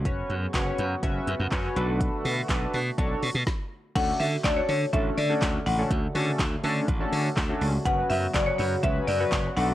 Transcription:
0.05 F#1 C#3 F#3 B3 C#4 F#4 B4 C#5, kick, closed hi-hat
0.30 F#2, closed hi-hat
0.54 F#1 C#4 F#4 B4 C#5, kick, clap, closed hi-hat
0.78 F#2, closed hi-hat
1.02 F#1 C#4 F#4 B4 E5, kick, closed hi-hat
1.27 F#2, closed hi-hat
1.39 F#2
1.51 F#2 C#4 F#4 B4 C#5, kick, clap, closed hi-hat
1.76 B1 D3 A3 D4 F#4 A4 B4, closed hi-hat
2.00 kick, closed hi-hat
2.25 B2, open hi-hat
2.49 B1 D4 F#4 A4 B4, kick, clap, closed hi-hat
2.74 B2, open hi-hat
2.98 B1 D4 F#4 A4 C#5, kick, closed hi-hat
3.23 B2, open hi-hat
3.35 B2
3.47 kick, snare
3.95 D2 C#3 D3 A3 C#4 D4 F#4 A4 F#5, kick, closed hi-hat, crash
4.20 D3 E5, open hi-hat
4.44 D2 A3 C#4 D4 F#4 A4 D5, kick, clap, closed hi-hat
4.57 C#5
4.69 D3 C#5, open hi-hat
4.93 A1 A3 C#4 D4 F#4 A4 E5, kick, closed hi-hat
5.17 D3 D5, open hi-hat
5.29 A3 C#4 D4 F#4 A4
5.42 D2, kick, clap, closed hi-hat
5.66 A1 F#5, open hi-hat
5.78 A3 C#4 D4 F#4 A4
5.91 D2, kick, closed hi-hat
6.15 D3 A3 C#4 D4 F#4 A4, open hi-hat
6.39 D2, kick, clap, closed hi-hat
6.63 D3 A3 C#4 D4 F#4 A4, open hi-hat
6.88 A1, kick, closed hi-hat
7.00 A3 C#4 D4 F#4 A4
7.12 D3, open hi-hat
7.37 D2, kick, clap, closed hi-hat
7.49 A3 C#4 D4 F#4 A4
7.61 C#2, open hi-hat
7.85 F#1 C#3 F#3 B3 C#4 F#4 B4 F#5, kick, closed hi-hat
8.10 F#2 E5, open hi-hat
8.34 F#1 F#3 B3 C#4 F#4 B4 D5, kick, clap, closed hi-hat
8.46 C#5
8.58 F#2 C#5, open hi-hat
8.83 C#2 F#3 B3 C#4 F#4 B4 E5, kick, closed hi-hat
9.08 F#2 D5, open hi-hat
9.20 F#3 B3 C#4 F#4 B4
9.32 F#1, kick, clap, closed hi-hat
9.56 B1 D3 A3 B3 D4 F#4 A4 F#5, open hi-hat

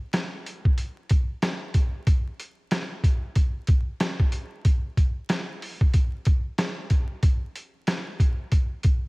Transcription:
0.13 cross-stick, snare, closed hi-hat
0.46 closed hi-hat
0.65 kick
0.78 closed hi-hat
1.09 kick, closed hi-hat
1.42 cross-stick, snare, closed hi-hat
1.74 kick, closed hi-hat
2.07 kick, closed hi-hat
2.40 closed hi-hat
2.71 cross-stick, snare, closed hi-hat
3.04 kick, closed hi-hat
3.36 kick, closed hi-hat
3.67 kick, closed hi-hat
4.00 cross-stick, snare, closed hi-hat
4.20 kick
4.32 closed hi-hat
4.65 kick, closed hi-hat
4.97 kick, closed hi-hat
5.29 cross-stick, snare, closed hi-hat
5.62 open hi-hat
5.81 kick
5.94 kick, closed hi-hat
6.25 kick, closed hi-hat
6.58 cross-stick, snare, closed hi-hat
6.90 kick, closed hi-hat
7.23 kick, closed hi-hat
7.56 closed hi-hat
7.87 cross-stick, snare, closed hi-hat
8.20 kick, closed hi-hat
8.52 kick, closed hi-hat
8.83 kick, closed hi-hat

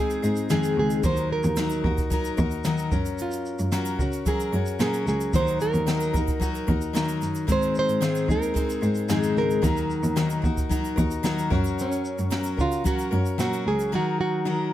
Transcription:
Already playing: D#2 G#3 C4 D#4 G#4
0.00 G#4
0.10 shaker
0.22 G#2 G#3 C4 D#4 G#4, shaker
0.36 shaker
0.50 F2 G#2 D#3 G#3 C4 D#4 G#4, snare, shaker
0.63 shaker
0.77 C#2 G#4
0.90 shaker
1.03 D#2 D#3 F#3 D#4 F#4 A#4 C5, kick, shaker
1.16 shaker
1.32 A#4
1.43 D#2, shaker
1.56 D#3 F#3 D#4 F#4 A#4, snare, shaker
1.69 shaker
1.84 D#2 D#4 F#4 A#4, kick
1.98 kick, shaker
2.10 F#3 D#4 F#4 A#4, kick, shaker
2.24 shaker
2.37 D#2 D#4 F#4 A#4, kick, shaker
2.50 shaker
2.64 D#3 F#3 D#4 F#4 A#4, snare, shaker
2.78 shaker
2.92 F#2 F#3 C#4 A#4, kick, shaker
3.05 shaker
3.18 F4, shaker
3.31 shaker
3.33 shaker
3.46 shaker
3.59 F#2, shaker
3.72 F#3 C#4 F#4 A#4, snare, shaker
3.85 shaker
3.99 C#3 C#4 F#4 A#4, kick, shaker
4.12 shaker
4.26 F#3 C#4 F#4 G#4 A#4, kick, shaker
4.40 shaker
4.52 F#2 C#4 F#4 A#4, shaker
4.66 shaker
4.67 shaker
4.79 A#2 F#3 C#4 F#4 G#4 A#4, snare, shaker
4.93 shaker
5.06 C#2 G#4, snare, shaker
5.20 shaker
5.33 D#2 D#3 F#3 D#4, kick, shaker
5.35 F#4 A#4 C5, shaker
5.47 shaker
5.48 shaker
5.60 A#4, shaker
5.73 D#2, shaker
5.87 D#3 F#3 D#4 F#4 A#4, snare, shaker
6.00 shaker
6.02 shaker
6.13 D#2 F#4 A#4, kick, shaker
6.16 D#4, shaker
6.27 kick, shaker
6.40 F#3 D#4 F#4 A#4, kick, shaker
6.54 shaker
6.67 D#2 D#4 F#4 A#4, kick, shaker
6.81 shaker
6.93 D#3 F#3 D#4 F#4 A#4, snare, shaker
7.08 shaker
7.21 F#2, snare, shaker
7.35 shaker
7.47 G#2 D#3 G#3 C4 D#4 G#4, kick, shaker
7.52 C5
7.62 shaker
7.75 shaker
7.79 C5
7.88 G#2, shaker
8.01 G#2 D#3 G#3 C4 D#4 G#4, snare, shaker
8.15 shaker
8.28 D#2 G#3 C4 D#4 G#4 A#4, kick, shaker
8.42 shaker
8.54 G#3 C4 D#4 G#4, kick, shaker
8.70 shaker
8.81 G#2 G#3 C4 D#4 G#4, shaker
8.95 shaker
8.97 shaker
9.08 F2 G#2 D#3 G#3 C4 D#4 G#4, snare, shaker
9.23 shaker
9.36 C#2 A#4, snare
9.50 shaker
9.62 D#2 D#3 F#3 D#4 F#4 A#4, kick, shaker
9.77 shaker
9.90 shaker
10.03 D#2, shaker
10.16 D#3 F#3 D#4 F#4 A#4, snare, shaker
10.30 shaker
10.42 D#2 D#4 F#4 A#4, kick, shaker
10.57 kick, shaker
10.69 F#3 D#4 F#4 A#4, kick, shaker
10.85 shaker
10.96 D#2 D#4 F#4 A#4, kick, shaker
11.11 shaker
11.23 D#3 F#3 D#4 F#4 A#4, snare, shaker
11.38 shaker
11.50 F#2 F#3 C#4 F#4 A#4, kick, snare
11.64 shaker
11.66 shaker
11.79 C#4, shaker
11.92 shaker
12.05 shaker
12.18 F#2, shaker
12.30 F#3 C#4 F#4 A#4, snare, shaker
12.43 shaker
12.46 shaker
12.57 C#3 C#4 F4 F#4 A#4, kick, shaker
12.72 shaker
12.84 F#3 C#4 F#4 A#4, kick, shaker
12.99 shaker
13.00 shaker
13.11 F#2 C#4 F#4 A#4, shaker
13.26 shaker
13.38 A#2 F#3 C#4 F#4 A#4, snare, shaker
13.53 shaker
13.66 C#2 G#4, snare
13.79 shaker
13.92 D#3 F#3 D#4 F#4 A#4
14.21 F#4
14.45 D#3 F#3 D#4 F#4 A#4

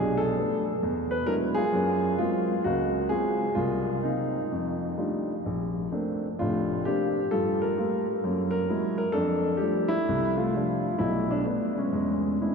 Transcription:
Already playing: B1 D4 G#4
0.17 A4
0.37 A3 B3 D4
0.83 E2
1.11 B4
1.26 F#3 G#3 D4 E4 A#4
1.55 F4 G#4
1.72 F#2 A#3
2.18 F#3 G#3 A#3 C4 F4
2.64 C#2 A#3 F#4
3.09 F#3 G#3 A#3 C4 F4 G#4
3.55 C2 A#3 F4
4.02 A#3 C4 D#4
4.52 F2
4.97 G3 A3 D4 D#4 F4
5.46 A#1
5.92 A3 A#3 C4 D4
6.39 F1 A2 D4 F4
6.85 A3 A#3 C4 D4 G4
7.31 G2 F4 A4
7.62 A#4
7.77 G3 A3 A#3 F4
8.24 F#2 A#3
8.51 A#4
8.68 F#3 G#3 A#3 E4
8.98 A#4
9.12 F2 D4 A4
9.57 G3 G4
9.62 F3 A3 D4
9.88 E4
10.09 C2
10.37 A3 F4
10.55 F3 G3 A3 D4
10.98 B1 A3 E4
11.30 D4
11.45 A3 B3 D4
11.78 G#3 C#4
11.93 E2 G#3
12.42 G#3 C4 D4 E4

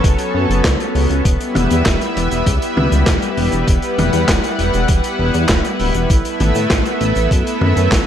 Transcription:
Already playing: F#3 B3 C#4 A4 C#5
0.04 F#1, kick, closed hi-hat
0.18 closed hi-hat
0.34 F#2
0.49 F#1, closed hi-hat
0.64 C#2, kick, snare, clap, closed hi-hat
0.80 closed hi-hat
0.95 C#2, open hi-hat
1.10 C#2, closed hi-hat
1.25 E1 G3 E4 B4 E5, kick, closed hi-hat, shaker
1.41 closed hi-hat, shaker
1.55 E1, closed hi-hat, mid tom
1.70 E2, closed hi-hat, shaker
1.86 E1, kick, snare, clap, closed hi-hat, shaker
2.01 closed hi-hat, shaker
2.16 E1, closed hi-hat
2.31 E1, closed hi-hat, shaker
2.46 C#2, kick, closed hi-hat, shaker
2.62 closed hi-hat, shaker
2.77 C#2, mid tom
2.92 C#2, closed hi-hat, shaker
3.06 E1, kick, snare, clap, closed hi-hat, shaker
3.22 closed hi-hat, shaker
3.37 E1, open hi-hat
3.52 E1, closed hi-hat, shaker
3.68 E1 F#5, kick, closed hi-hat, shaker
3.82 closed hi-hat, shaker
3.98 E1, closed hi-hat, mid tom
4.13 E2, closed hi-hat, shaker
4.28 E1, kick, snare, clap, closed hi-hat, shaker
4.43 closed hi-hat, shaker
4.59 E1, closed hi-hat
4.74 E1, closed hi-hat, shaker
4.88 E1, kick, closed hi-hat, shaker
5.04 closed hi-hat, shaker
5.19 E1
5.34 E2, closed hi-hat, shaker
5.49 E1, kick, snare, clap, closed hi-hat, shaker
5.64 closed hi-hat, shaker
5.79 D1, open hi-hat
5.94 E1, closed hi-hat, shaker
6.10 A1 A3 B3 E5, kick, closed hi-hat, shaker
6.25 closed hi-hat, shaker
6.40 A1, closed hi-hat, mid tom
6.55 A2, closed hi-hat, shaker
6.70 A1, kick, snare, clap, closed hi-hat, shaker
6.85 closed hi-hat, shaker
7.01 A1, closed hi-hat
7.15 A1, closed hi-hat, shaker
7.31 F#2, kick, closed hi-hat, shaker
7.47 closed hi-hat, shaker
7.61 F#2, mid tom
7.77 F#2, closed hi-hat, shaker
7.92 A1, kick, snare, clap, closed hi-hat, shaker

